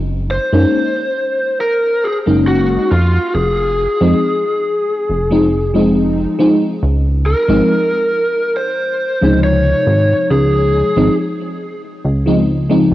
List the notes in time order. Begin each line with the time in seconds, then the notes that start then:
Already playing: F#1
0.31 C5
0.52 F#2 G#3 A#3 C#4 D#4
1.61 A#4
2.04 G#4
2.26 F#1 G#3 A#3 C#4 D#4
2.48 F#4
2.92 F2 F4
3.35 F1 G#4
4.00 F2 F3 G#3 C4 D#4
5.09 F1
5.30 F3 G#3 C4 D#4
5.74 F3 G#3 C4 D#4
6.39 F3 G#3 C4 D#4
6.83 C#2
7.26 A#4
7.48 G#1 F3 G#3 C4 D#4
8.57 C5
9.21 C#2 C3 F3 G#3 D#4
9.44 C#5
9.87 G#1
10.30 C#2 G#4
10.96 G#1 F3 G#3 C4 D#4
12.05 C#2
12.26 F3 G#3 C4 D#4
12.69 F3 G#3 C4 D#4